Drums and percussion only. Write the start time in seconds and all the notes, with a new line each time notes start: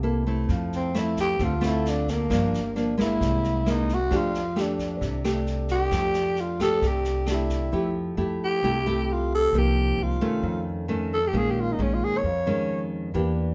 0.49 kick, snare
0.73 snare
0.94 cross-stick, snare
1.17 kick, snare
1.39 kick, snare
1.62 cross-stick, snare
1.85 snare
2.08 kick, snare
2.30 kick, cross-stick, snare
2.54 snare
2.76 snare
2.98 kick, cross-stick, snare
3.21 kick, snare
3.44 snare
3.66 cross-stick, snare
3.89 kick, snare
4.11 kick, snare
4.34 snare
4.57 cross-stick, snare
4.79 kick, snare
5.02 kick, snare
5.24 cross-stick, snare
5.47 snare
5.68 kick, snare
5.91 kick, cross-stick, snare
6.14 snare
6.36 snare
6.60 kick, cross-stick, snare
6.82 kick, snare
7.05 snare
7.26 cross-stick, snare
7.49 kick, snare